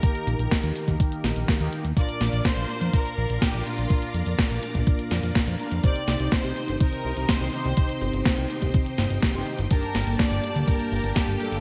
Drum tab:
HH |xxxxxxxxxxxxxxxx|xxxxxxxxxx-xxxxx|xxxxxxxxxx-xxxxx|xxxxxxxxxx-xxxxx|
SD |----o-----o-o---|--o-o-------o---|----o-----o-o---|--o-o-------o---|
BD |o---o--oo---o---|o---o---o---o---|o---o--oo---o---|o---o---o---o---|

HH |xxxxxxxxxxxxxxxx|xxxxxxxxxx-xxxxx|
SD |----o-----o-o---|--o-o-------o---|
BD |o---o--oo---o---|o---o---o---o---|